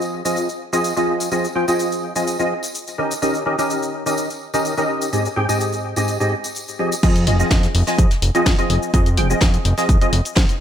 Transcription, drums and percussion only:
0.02 tambourine, shaker
0.25 tambourine, shaker
0.36 tambourine, shaker
0.49 tambourine, shaker
0.73 tambourine, shaker
0.84 tambourine, shaker
0.97 tambourine, shaker
1.20 tambourine, shaker
1.31 tambourine, shaker
1.44 tambourine, shaker
1.68 tambourine, shaker
1.79 tambourine, shaker
1.92 tambourine, shaker
2.16 tambourine, shaker
2.27 tambourine, shaker
2.40 tambourine, shaker
2.63 tambourine, shaker
2.75 tambourine, shaker
2.87 tambourine, shaker
3.11 tambourine, shaker
3.22 tambourine, shaker
3.33 tambourine, shaker
3.59 tambourine, shaker
3.70 tambourine, shaker
3.83 tambourine, shaker
4.06 tambourine, shaker
4.17 tambourine, shaker
4.30 tambourine, shaker
4.54 tambourine, shaker
4.65 tambourine, shaker
4.77 tambourine, shaker
5.01 tambourine, shaker
5.13 tambourine, shaker
5.25 tambourine, shaker
5.49 tambourine, shaker
5.61 tambourine, shaker
5.72 tambourine, shaker
5.96 tambourine, shaker
6.08 tambourine, shaker
6.20 tambourine, shaker
6.44 tambourine, shaker
6.55 tambourine, shaker
6.68 tambourine, shaker
6.92 tambourine, shaker
7.03 kick, closed hi-hat, crash, shaker
7.16 closed hi-hat, shaker
7.27 closed hi-hat, open hi-hat
7.40 shaker
7.50 kick, snare, closed hi-hat, shaker
7.63 snare, closed hi-hat, shaker
7.74 open hi-hat
7.87 snare, closed hi-hat, shaker
7.98 kick, closed hi-hat, shaker
8.11 snare, closed hi-hat, shaker
8.22 closed hi-hat, open hi-hat
8.35 closed hi-hat, shaker
8.46 kick, snare, closed hi-hat, shaker
8.58 closed hi-hat, shaker
8.70 closed hi-hat, open hi-hat
8.83 shaker
8.94 kick, closed hi-hat, shaker
9.06 closed hi-hat, shaker
9.17 closed hi-hat, open hi-hat
9.30 shaker
9.41 kick, snare, closed hi-hat, shaker
9.54 closed hi-hat, shaker
9.65 closed hi-hat, open hi-hat
9.78 snare, closed hi-hat, shaker
9.89 kick, closed hi-hat, shaker
10.01 closed hi-hat, shaker
10.13 closed hi-hat, open hi-hat
10.25 closed hi-hat, shaker
10.35 kick, snare, closed hi-hat, shaker
10.37 snare
10.49 closed hi-hat, shaker

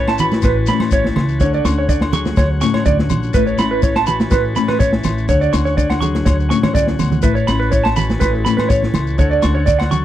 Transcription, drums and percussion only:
0.07 snare, low agogo, shekere
0.18 low conga, shekere
0.31 snare, high conga, shekere
0.42 kick, snare, low agogo, shekere
0.66 snare, shekere
0.80 snare, high conga, low agogo
0.91 kick, shekere
1.04 snare, high conga
1.16 snare, low conga, low agogo
1.29 shekere
1.40 kick, shekere
1.53 shekere
1.65 snare, high conga, low agogo, shekere
1.89 kick, shekere
2.01 snare, low agogo
2.13 low conga, shekere
2.25 snare, high conga, shekere
2.37 kick, snare, low agogo, shekere
2.61 snare, shekere
2.74 snare, high conga, low agogo
2.86 kick, shekere
2.99 snare, high conga
3.10 low conga, low agogo, shekere
3.23 shekere
3.34 kick, shekere
3.47 shekere
3.58 snare, high conga, low agogo, shekere
3.82 kick, shekere
3.95 snare, low agogo, shekere
4.06 low conga, shekere
4.20 snare, high conga, shekere
4.31 kick, snare, low agogo, shekere
4.56 snare, shekere
4.68 snare, high conga, low agogo
4.80 kick, shekere
4.92 snare, high conga
5.04 snare, low conga, low agogo, shekere
5.18 shekere
5.29 kick, shekere
5.42 shekere
5.53 snare, low agogo, shekere
5.66 snare, shekere
5.78 kick, shekere
5.90 snare, low agogo, shekere
6.02 low conga, shekere
6.15 snare, high conga, shekere
6.26 kick, snare, low agogo, shekere
6.40 shekere
6.50 snare, shekere
6.63 snare, high conga, low conga, low agogo, shekere
6.75 kick, shekere
6.87 snare, high conga, shekere
6.99 low conga, low agogo, shekere
7.12 low conga, shekere
7.22 kick, shekere
7.36 shekere
7.48 snare, high conga, low agogo, shekere
7.61 snare
7.72 kick, shekere
7.85 snare, low agogo, shekere
7.96 low conga, shekere
8.09 snare, high conga, shekere
8.21 kick, snare, low agogo, shekere
8.46 snare, shekere
8.58 snare, high conga, low agogo
8.70 kick, shekere
8.83 snare, high conga
8.94 snare, low conga, low agogo, shekere
9.07 shekere
9.19 kick, shekere
9.31 shekere
9.42 snare, high conga, low agogo, shekere
9.67 kick, shekere
9.80 snare, low agogo, shekere
9.92 low conga, shekere

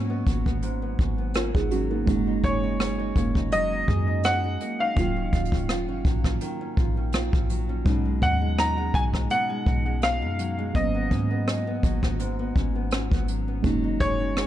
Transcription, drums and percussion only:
0.27 kick, closed hi-hat
0.46 kick
0.62 closed hi-hat
0.99 kick
1.34 cross-stick, closed hi-hat
1.55 kick
1.71 closed hi-hat
2.07 kick, closed hi-hat
2.44 kick, closed hi-hat
2.80 cross-stick, closed hi-hat
3.16 kick, closed hi-hat
3.35 kick
3.52 closed hi-hat
3.88 kick
4.23 cross-stick, closed hi-hat
4.60 closed hi-hat
4.97 kick, closed hi-hat
5.33 kick, closed hi-hat
5.45 closed hi-hat
5.52 kick
5.57 closed hi-hat
5.69 cross-stick, closed hi-hat
6.05 kick, closed hi-hat
6.24 kick, cross-stick
6.41 closed hi-hat
6.77 kick
7.13 cross-stick, closed hi-hat
7.33 kick
7.50 closed hi-hat
7.86 kick, closed hi-hat
8.22 kick, closed hi-hat
8.59 cross-stick, closed hi-hat
8.94 kick, closed hi-hat
9.14 kick, cross-stick
9.30 closed hi-hat
9.66 kick
10.02 cross-stick, closed hi-hat
10.39 closed hi-hat
10.75 kick, closed hi-hat
11.11 kick, closed hi-hat
11.48 cross-stick, closed hi-hat
11.83 kick, closed hi-hat
12.03 kick, cross-stick
12.20 closed hi-hat
12.56 kick
12.91 cross-stick, closed hi-hat
13.12 kick
13.28 closed hi-hat
13.64 kick, closed hi-hat
14.00 kick, closed hi-hat
14.37 cross-stick, closed hi-hat

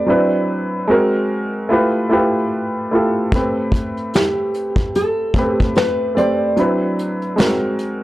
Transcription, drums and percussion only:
3.32 kick, closed hi-hat
3.72 kick, closed hi-hat
3.97 closed hi-hat
4.14 snare, closed hi-hat
4.54 closed hi-hat
4.76 kick, closed hi-hat
4.95 closed hi-hat
5.34 kick, closed hi-hat
5.60 kick
5.75 snare, closed hi-hat
6.18 closed hi-hat
6.57 closed hi-hat
6.99 closed hi-hat
7.22 closed hi-hat
7.38 snare, closed hi-hat
7.79 closed hi-hat

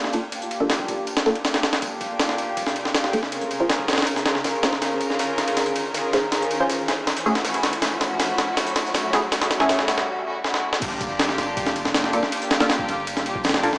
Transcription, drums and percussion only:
0.04 snare
0.13 ride, tambourine
0.32 ride, tambourine
0.42 closed hi-hat
0.51 ride, tambourine
0.60 kick
0.70 snare, ride, tambourine
0.79 kick
0.88 kick, ride, tambourine
1.07 ride, tambourine
1.17 snare, closed hi-hat, ride
1.26 snare, tambourine
1.35 ride
1.44 snare, ride, tambourine
1.54 snare, ride
1.63 snare, ride, tambourine
1.73 snare, ride
1.82 kick, ride, tambourine
2.01 kick, ride, tambourine
2.20 snare, ride, tambourine
2.29 snare
2.38 ride, tambourine
2.57 kick, ride, tambourine
2.67 snare, closed hi-hat
2.76 ride, tambourine
2.85 snare
2.94 snare, ride, tambourine
3.04 snare
3.13 ride, tambourine
3.23 snare
3.32 ride, tambourine
3.42 closed hi-hat
3.51 ride, tambourine
3.60 kick
3.70 snare, ride, tambourine
3.79 kick
3.88 snare, ride, tambourine
3.93 snare, ride
3.98 snare, ride
4.02 snare, ride
4.07 ride, tambourine
4.16 snare, closed hi-hat
4.26 snare, ride, tambourine
4.35 snare
4.44 snare, ride, tambourine
4.54 snare
4.63 snare, ride, tambourine
4.73 snare
4.82 snare, ride, tambourine
5.01 ride, tambourine
5.10 snare
5.19 snare, ride, tambourine
5.38 snare, ride, tambourine
5.48 ride
5.57 snare, ride, tambourine
5.66 closed hi-hat
5.76 ride, tambourine
5.94 snare, ride, tambourine
6.13 snare, ride, tambourine
6.32 snare, ride, tambourine
6.42 closed hi-hat
6.51 ride, tambourine
6.70 snare, ride, tambourine
6.88 snare, ride, tambourine
7.07 snare, ride, tambourine
7.17 closed hi-hat, ride
7.26 tambourine
7.35 snare, ride
7.45 snare, ride, tambourine
7.54 snare, ride
7.63 snare, ride, tambourine
7.73 ride
7.82 snare, ride, tambourine
8.01 snare, ride, tambourine
8.20 snare, ride, tambourine
8.38 snare, ride, tambourine
8.57 snare, ride, tambourine
8.67 closed hi-hat
8.76 snare, ride, tambourine
8.85 snare
8.94 snare, ride, tambourine
9.13 snare, ride, tambourine
9.32 snare, ride, tambourine
9.42 snare, closed hi-hat
9.51 snare, ride, tambourine
9.60 snare
9.69 snare, ride, tambourine
9.79 snare
9.88 snare, ride, tambourine
9.98 snare
10.44 snare
10.54 snare
10.73 snare
10.82 kick, crash, ride, tambourine
11.01 kick, ride, tambourine
11.19 snare, ride, tambourine
11.29 snare
11.38 snare, ride, tambourine
11.57 kick, ride, tambourine
11.66 snare, closed hi-hat
11.76 ride, tambourine
11.85 snare
11.94 snare, ride, tambourine
12.04 snare
12.13 ride, tambourine
12.23 snare
12.32 ride, tambourine
12.42 closed hi-hat
12.51 snare, ride, tambourine
12.60 snare, ride
12.69 snare, ride, tambourine
12.79 kick
12.89 ride, tambourine
13.07 ride, tambourine
13.17 snare, closed hi-hat
13.26 ride, tambourine
13.35 kick
13.44 snare, ride, tambourine
13.49 snare, ride
13.54 snare, ride
13.63 ride, tambourine
13.73 snare

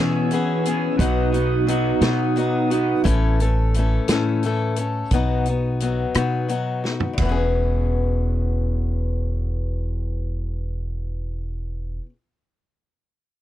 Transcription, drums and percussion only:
0.31 closed hi-hat
0.65 closed hi-hat
0.99 kick, closed hi-hat
1.34 closed hi-hat
1.68 closed hi-hat
2.01 snare, closed hi-hat
2.37 closed hi-hat
2.71 closed hi-hat
3.05 kick, closed hi-hat
3.40 closed hi-hat
3.74 closed hi-hat
4.08 snare, closed hi-hat
4.43 closed hi-hat
4.76 closed hi-hat
5.11 kick, closed hi-hat
5.45 closed hi-hat
5.80 closed hi-hat
6.14 cross-stick, closed hi-hat
6.49 closed hi-hat
6.85 snare
7.00 floor tom
7.18 kick, ride

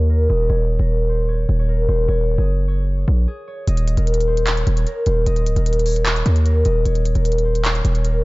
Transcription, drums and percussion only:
3.68 closed hi-hat
3.77 closed hi-hat
3.88 closed hi-hat
3.97 closed hi-hat
4.07 closed hi-hat
4.14 closed hi-hat
4.21 closed hi-hat
4.37 closed hi-hat
4.47 clap, closed hi-hat
4.57 closed hi-hat
4.67 closed hi-hat
4.77 closed hi-hat
4.87 closed hi-hat
5.06 closed hi-hat
5.26 closed hi-hat
5.36 closed hi-hat
5.46 closed hi-hat
5.56 closed hi-hat
5.66 closed hi-hat
5.73 closed hi-hat
5.79 closed hi-hat
5.86 open hi-hat
5.96 closed hi-hat
6.06 clap, closed hi-hat
6.16 closed hi-hat
6.26 closed hi-hat
6.36 closed hi-hat
6.46 closed hi-hat
6.65 closed hi-hat
6.86 closed hi-hat
6.95 closed hi-hat
7.05 closed hi-hat
7.15 closed hi-hat
7.25 closed hi-hat
7.32 closed hi-hat
7.38 closed hi-hat
7.55 closed hi-hat
7.65 clap, closed hi-hat
7.75 closed hi-hat
7.85 closed hi-hat
7.95 closed hi-hat
8.05 closed hi-hat

